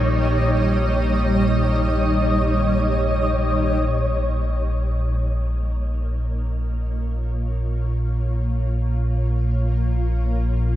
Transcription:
0.00 3.89 A#1 medium
0.00 3.90 A#2 medium
0.00 3.91 G3 medium
0.00 6.74 D#4 medium
0.00 3.91 C#5 medium
0.00 6.73 D#5 medium
3.89 10.76 A#1 medium
3.89 10.76 A#2 medium
3.89 10.76 A#3 medium
5.61 10.76 C#5 medium
5.82 10.76 F4 medium

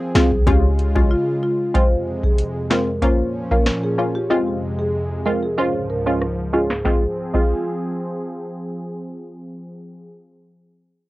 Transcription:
0.00 0.46 F3 medium
0.00 0.46 C4 medium
0.00 0.46 G#4 medium
0.15 0.43 C2 medium
0.15 0.35 G#3 medium
0.15 0.35 C4 medium
0.15 0.35 F4 medium
0.15 0.26 G#4 medium
0.15 cross-stick medium
0.15 snare loud
0.15 closed hi-hat medium
0.15 high bongo soft
0.32 kick medium
0.47 1.04 C#2 loud
0.47 1.73 C#3 medium
0.47 0.92 G#3 loud
0.47 1.73 G#3 medium
0.47 0.92 C#4 medium
0.47 1.73 F4 medium
0.47 0.92 F4 loud
0.47 0.93 G4 loud
0.47 kick loud
0.47 closed hi-hat medium
0.47 high bongo medium
0.79 closed hi-hat medium
0.96 1.11 G#3 medium
0.96 1.11 C#4 medium
0.96 1.11 F4 medium
0.96 kick loud
0.96 high bongo medium
1.11 1.22 F4 medium
1.43 1.54 F4 medium
1.74 3.01 F2 medium
1.74 3.01 C3 medium
1.74 2.34 G#3 medium
1.74 3.01 G#3 medium
1.74 2.34 C4 medium
1.74 2.34 F4 loud
1.74 1.86 C5 loud
1.74 kick loud
1.74 closed hi-hat medium
2.23 2.34 G#4 medium
2.23 kick medium
2.38 closed hi-hat medium
2.70 2.90 G#3 medium
2.70 2.90 C4 medium
2.70 2.90 F4 medium
2.70 2.82 A#4 medium
2.70 cross-stick medium
2.70 snare loud
3.02 4.29 A#2 medium
3.02 4.29 F3 medium
3.02 3.47 A#3 loud
3.02 4.29 C#4 medium
3.02 3.47 C#4 medium
3.02 3.47 F4 loud
3.02 3.14 C5 medium
3.02 kick medium
3.02 closed hi-hat medium
3.51 3.70 A#3 medium
3.51 3.70 C#4 medium
3.51 3.70 F4 medium
3.51 3.61 A#4 medium
3.51 kick medium
3.66 cross-stick medium
3.66 snare loud
3.66 closed hi-hat medium
3.83 3.93 G#4 medium
3.98 4.18 A#3 medium
3.98 4.18 C#4 medium
3.98 4.18 F4 medium
4.15 4.25 G4 medium
4.30 5.56 F2 medium
4.30 5.56 C3 medium
4.30 5.56 G#3 medium
4.30 4.89 G#3 medium
4.30 4.89 C4 medium
4.30 4.89 F4 loud
4.79 4.89 G#4 medium
5.26 5.46 G#3 medium
5.26 5.46 C4 medium
5.26 5.46 F4 medium
5.26 5.37 A#4 medium
5.43 5.53 G#4 medium
5.58 6.84 C#2 medium
5.58 6.84 G#2 medium
5.58 6.84 F3 medium
5.58 6.02 G#3 medium
5.58 6.03 C#4 medium
5.58 6.03 F4 loud
5.58 5.69 C5 medium
5.90 6.01 A#4 medium
6.06 6.25 G#3 medium
6.06 6.25 C#4 medium
6.06 6.25 F4 medium
6.22 cross-stick medium
6.53 6.73 G#3 medium
6.53 6.73 C#4 medium
6.53 6.74 F4 medium
6.53 6.65 G#4 medium
6.70 cross-stick medium
6.70 snare loud
6.85 10.09 F3 medium
6.85 7.04 G#3 medium
6.85 10.08 C4 medium
6.85 7.04 C4 medium
6.85 7.04 F4 medium
6.85 10.09 G#4 medium
6.85 7.04 G#4 medium
6.85 kick loud
6.85 snare medium
7.34 10.57 G#3 medium
7.34 10.58 C4 medium
7.34 10.58 F4 medium
7.34 8.73 G#4 medium
7.34 kick medium
7.34 crash medium

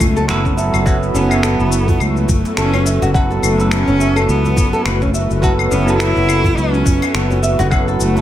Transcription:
0.00 0.30 C#2 medium
0.00 0.28 F#3 medium
0.00 8.21 F#3 medium
0.00 0.57 A3 medium
0.00 0.29 B3 medium
0.00 0.30 E4 medium
0.00 8.21 F#4 medium
0.00 0.15 A4 loud
0.00 0.30 A4 loud
0.00 8.21 A4 medium
0.00 1.75 C#5 medium
0.00 8.21 E5 medium
0.00 kick loud
0.00 djembe bass loud
0.00 claves medium
0.00 shaker medium
0.16 0.28 A4 medium
0.16 shaker soft
0.28 0.69 F#1 medium
0.28 0.54 F#3 loud
0.28 0.55 B3 loud
0.28 0.55 E4 loud
0.28 0.55 A4 loud
0.28 0.44 B4 medium
0.28 finger snap loud
0.28 shaker soft
0.45 0.52 C#4 medium
0.45 kick medium
0.45 shaker soft
0.57 0.83 F#3 medium
0.57 0.83 B3 medium
0.57 0.84 E4 medium
0.57 0.84 A4 medium
0.57 0.73 E5 medium
0.57 djembe tone soft
0.57 shaker medium
0.73 1.11 F#1 medium
0.73 djembe tone soft
0.73 claves medium
0.73 shaker soft
0.86 1.27 F#3 medium
0.86 1.27 B3 medium
0.86 1.27 E4 medium
0.86 0.95 F#4 loud
0.86 1.28 A4 loud
0.86 kick loud
0.86 shaker soft
1.03 shaker soft
1.14 1.55 F#1 loud
1.14 2.03 B3 medium
1.14 1.42 C#4 medium
1.14 shaker medium
1.29 3.11 F#3 medium
1.29 3.11 B3 medium
1.29 3.12 E4 medium
1.29 claves medium
1.29 shaker soft
1.33 3.13 A4 medium
1.43 1.99 A4 medium
1.43 finger snap medium
1.43 shaker soft
1.59 1.97 F#1 medium
1.59 8.21 B4 medium
1.59 shaker soft
1.72 shaker medium
1.88 kick medium
1.88 djembe tone soft
1.88 djembe bass medium
1.88 shaker soft
2.00 2.25 C#2 medium
2.00 2.57 A3 medium
2.00 claves medium
2.00 shaker soft
2.17 shaker soft
2.29 2.42 F#1 medium
2.29 kick loud
2.29 djembe bass medium
2.29 shaker medium
2.45 djembe slap medium
2.45 shaker soft
2.57 2.98 F#1 medium
2.57 2.99 C#4 loud
2.57 2.72 A4 medium
2.57 finger snap medium
2.57 shaker soft
2.74 2.81 C#4 medium
2.74 djembe tone medium
2.74 claves medium
2.74 shaker soft
2.86 3.01 E5 medium
2.86 shaker medium
3.02 3.39 F#1 medium
3.02 3.09 F#4 loud
3.02 djembe slap medium
3.02 shaker soft
3.14 3.25 F#3 medium
3.14 3.25 B3 medium
3.14 3.25 E4 medium
3.14 3.26 A4 loud
3.14 3.30 F#5 medium
3.14 kick loud
3.14 shaker soft
3.30 3.86 A4 medium
3.30 shaker soft
3.43 3.83 F#1 loud
3.43 3.74 A3 loud
3.43 djembe slap soft
3.43 claves medium
3.43 shaker medium
3.57 5.39 F#3 medium
3.57 5.40 B3 medium
3.57 5.40 E4 medium
3.57 djembe slap soft
3.57 shaker soft
3.61 5.41 A4 medium
3.71 4.28 C#4 loud
3.71 finger snap medium
3.71 shaker soft
3.87 4.25 F#1 medium
3.87 3.95 C#4 medium
3.87 shaker soft
4.00 4.16 E5 medium
4.00 shaker medium
4.16 4.72 A4 loud
4.16 claves medium
4.16 shaker soft
4.29 4.53 C#2 loud
4.29 4.87 B3 loud
4.29 shaker soft
4.45 djembe tone medium
4.45 shaker soft
4.56 4.71 F#1 medium
4.56 kick loud
4.56 djembe bass medium
4.56 shaker medium
4.73 4.85 A4 loud
4.73 shaker soft
4.85 5.26 F#1 medium
4.85 5.31 A3 medium
4.85 5.00 B4 medium
4.85 finger snap medium
4.85 claves medium
4.85 shaker soft
5.02 5.09 C#4 medium
5.02 kick medium
5.02 shaker soft
5.14 5.30 E5 medium
5.14 djembe tone soft
5.14 shaker medium
5.31 5.68 F#1 medium
5.31 djembe tone soft
5.31 shaker soft
5.42 5.83 F#3 medium
5.42 5.84 B3 medium
5.42 5.84 E4 medium
5.42 5.52 F#4 loud
5.42 5.84 A4 loud
5.42 kick loud
5.42 shaker soft
5.59 claves medium
5.59 shaker soft
5.71 6.12 F#1 loud
5.71 5.98 B3 loud
5.71 5.99 C#4 medium
5.71 shaker medium
5.86 7.68 F#3 medium
5.86 7.68 B3 medium
5.86 7.69 E4 medium
5.86 7.70 A4 medium
5.86 shaker soft
5.99 6.58 E4 loud
5.99 6.56 A4 medium
5.99 finger snap loud
5.99 shaker soft
6.16 6.54 F#1 medium
6.16 shaker soft
6.29 claves medium
6.29 shaker medium
6.44 kick medium
6.44 djembe tone soft
6.44 djembe bass medium
6.44 shaker soft
6.57 6.81 C#2 medium
6.57 7.16 C#4 loud
6.57 shaker soft
6.74 shaker soft
6.86 6.99 F#1 medium
6.86 kick loud
6.86 djembe bass medium
6.86 shaker medium
7.02 djembe slap medium
7.02 claves medium
7.02 shaker soft
7.14 7.55 F#1 loud
7.14 7.59 B3 medium
7.14 7.29 A4 medium
7.14 finger snap loud
7.14 shaker soft
7.30 7.38 C#4 medium
7.30 djembe tone medium
7.30 shaker soft
7.43 7.59 E5 medium
7.43 shaker medium
7.59 7.97 F#1 loud
7.59 7.66 F#4 loud
7.59 djembe slap medium
7.59 shaker soft
7.71 7.82 F#3 medium
7.71 7.82 B3 medium
7.71 7.82 E4 medium
7.71 7.83 A4 loud
7.71 7.87 F#5 medium
7.71 kick loud
7.71 claves medium
7.71 shaker soft
7.88 8.21 A4 medium
7.88 shaker soft
7.99 8.21 F#1 loud
7.99 8.21 A3 loud
7.99 djembe slap soft
7.99 shaker medium
8.14 8.21 F#3 medium
8.14 8.21 B3 medium
8.14 8.21 E4 medium
8.14 djembe slap soft
8.14 shaker soft

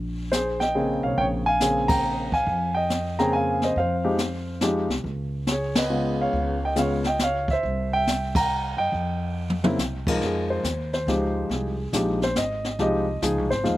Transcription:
0.00 0.99 A#1 medium
0.32 0.60 G#4 medium
0.32 0.58 C5 medium
0.32 snare medium
0.32 hi-hat pedal soft
0.60 1.01 D#5 medium
0.60 1.00 G5 medium
0.60 snare soft
0.75 1.41 C#3 medium
0.75 1.41 A#3 medium
0.75 1.41 C4 medium
0.75 1.41 G#4 medium
1.03 1.16 B1 medium
1.03 1.18 C#5 medium
1.03 1.18 F5 medium
1.18 2.43 A#1 medium
1.18 1.27 C#5 medium
1.18 1.24 G5 medium
1.18 brush sweep soft
1.18 kick soft
1.46 1.87 F5 medium
1.46 1.86 G#5 loud
1.60 2.27 C#3 medium
1.60 2.27 A#3 soft
1.60 2.27 C4 medium
1.60 2.27 G#4 medium
1.60 snare medium
1.60 hi-hat pedal medium
1.88 2.30 G5 medium
1.88 2.33 A#5 loud
1.88 kick medium
1.88 ride medium
2.32 2.74 F5 medium
2.32 2.73 G#5 medium
2.32 kick medium
2.47 3.72 F2 medium
2.47 brush sweep soft
2.47 kick soft
2.75 3.16 D#5 medium
2.75 3.15 G5 medium
2.90 snare medium
2.90 hi-hat pedal soft
3.19 3.73 C#3 medium
3.19 3.73 A#3 medium
3.19 3.73 C4 medium
3.19 3.73 G#4 medium
3.19 3.33 G5 medium
3.19 3.33 A#5 medium
3.19 snare soft
3.33 3.61 F5 medium
3.33 3.62 G#5 medium
3.62 3.77 C5 medium
3.62 3.77 D#5 medium
3.62 snare soft
3.76 4.86 F2 medium
3.76 4.88 C5 medium
3.76 4.87 F5 medium
3.76 brush sweep soft
3.76 kick soft
4.04 4.17 F3 medium
4.04 4.17 G#3 medium
4.04 4.18 D#4 medium
4.04 4.17 G4 medium
4.18 snare medium
4.18 hi-hat pedal soft
4.61 4.87 F3 medium
4.61 4.88 G#3 medium
4.61 4.87 D#4 medium
4.61 4.88 G4 medium
4.61 snare medium
4.61 hi-hat pedal medium
4.89 5.03 C2 medium
4.89 snare soft
5.04 6.29 C#2 medium
5.04 brush sweep soft
5.04 kick soft
5.47 snare medium
5.47 hi-hat pedal soft
5.52 5.76 G#4 medium
5.52 5.79 C#5 medium
5.75 6.17 B4 medium
5.75 6.17 D#5 medium
5.75 snare medium
5.75 ride medium
5.89 6.56 C#3 medium
5.89 6.56 G#3 medium
5.89 6.56 B3 medium
5.89 6.56 F4 medium
6.21 6.60 C#5 medium
6.21 6.60 F5 medium
6.33 7.58 C#2 medium
6.33 brush sweep soft
6.33 kick soft
6.65 6.78 D#5 medium
6.65 6.77 G5 medium
6.76 7.02 C#3 medium
6.76 7.02 G#3 medium
6.76 7.02 B3 medium
6.76 7.02 F4 medium
6.76 7.07 F5 medium
6.76 snare medium
6.76 hi-hat pedal medium
6.80 7.05 C#5 medium
7.04 7.20 G5 medium
7.04 snare soft
7.08 7.20 D#5 medium
7.19 snare medium
7.19 hi-hat pedal medium
7.24 7.49 C#5 medium
7.24 7.48 F5 medium
7.48 7.89 E5 medium
7.48 kick medium
7.53 7.91 C5 medium
7.63 8.73 C2 medium
7.63 brush sweep soft
7.63 kick soft
7.93 8.33 E5 medium
7.93 8.32 G5 loud
8.07 snare medium
8.07 hi-hat pedal medium
8.35 8.76 G5 medium
8.35 8.80 A#5 loud
8.35 kick medium
8.35 ride medium
8.77 8.91 F#2 medium
8.77 9.75 D#5 medium
8.77 10.03 G5 medium
8.92 9.74 F2 medium
8.92 brush sweep soft
8.92 kick soft
9.50 mid tom medium
9.64 9.77 C#3 medium
9.64 9.77 A#3 medium
9.64 9.77 C4 medium
9.64 9.77 E4 medium
9.64 mid tom medium
9.78 10.18 C2 medium
9.78 snare medium
9.78 hi-hat pedal soft
10.07 10.62 F3 medium
10.07 10.62 G#3 medium
10.07 10.62 D#4 medium
10.07 10.62 A#4 medium
10.07 kick medium
10.07 crash medium
10.21 10.62 F2 medium
10.21 brush sweep soft
10.21 kick soft
10.21 snare soft
10.25 10.51 G#4 medium
10.50 10.90 C5 medium
10.63 11.05 D#2 medium
10.63 kick soft
10.63 snare medium
10.63 hi-hat pedal soft
10.93 11.47 C5 medium
10.93 snare soft
11.07 11.48 C#2 medium
11.07 11.73 F3 medium
11.07 11.73 G#3 soft
11.07 11.73 D#4 medium
11.07 11.73 G4 medium
11.07 kick soft
11.07 snare soft
11.49 11.91 C2 medium
11.49 11.91 G#4 medium
11.49 brush sweep soft
11.49 kick soft
11.49 snare soft
11.92 12.34 A#1 medium
11.92 12.19 F3 medium
11.92 12.19 G#3 medium
11.92 12.19 D#4 medium
11.92 12.19 G4 medium
11.92 kick soft
11.92 snare medium
11.92 hi-hat pedal medium
12.22 12.37 C5 medium
12.22 snare soft
12.36 12.77 G#1 medium
12.36 12.77 D#5 medium
12.36 kick soft
12.36 snare medium
12.36 hi-hat pedal soft
12.64 snare soft
12.79 13.21 C2 medium
12.79 13.05 F3 medium
12.79 13.05 G#3 medium
12.79 13.05 D#4 medium
12.79 13.05 G4 medium
12.79 13.48 D#5 medium
12.79 brush sweep soft
12.79 kick soft
12.79 snare soft
13.22 13.38 C#2 medium
13.22 13.48 F3 medium
13.22 13.48 G#3 medium
13.22 13.48 D#4 medium
13.22 13.48 G#4 medium
13.22 kick soft
13.22 snare medium
13.22 hi-hat pedal medium
13.38 13.51 C2 medium
13.50 13.64 G#1 medium
13.50 13.77 C5 medium
13.50 snare soft
13.64 13.77 D#2 medium
13.64 13.77 F3 medium
13.64 13.77 G#3 medium
13.64 13.77 D#4 medium
13.64 13.77 F4 medium
13.64 kick soft
13.64 snare soft

